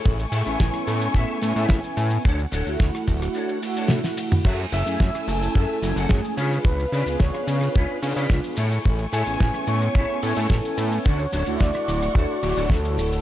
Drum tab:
CC |----------------|----------------|x---------------|----------------|
HH |--o---o---o---o-|--o---o---o---o-|--o---o---o---o-|--o---o---o---o-|
SH |xxxxxxxxx-xxxxxx|xxxxxxxxxxxxxxxx|xxxxxxxxx-xxxxxx|xxxxxxxxx-xxxxxx|
SD |----or------o---|----or-r----oo--|----or------o---|----or-r----o---|
T1 |----------------|------------o---|----------------|----------------|
T2 |----------------|---------------o|----------------|----------------|
BD |o---o---o---o---|o---o-o---------|o---o---o---o---|o---o---o---o---|

CC |----------------|----------------|
HH |--o---o---o---o-|--o---o---o---o-|
SH |xxxxxxxxx-xxxxxx|xxxxxxxxx-xxxxxx|
SD |----or------o---|----or-r----o---|
T1 |----------------|----------------|
T2 |----------------|----------------|
BD |o---o---o---o---|o---o---o---o---|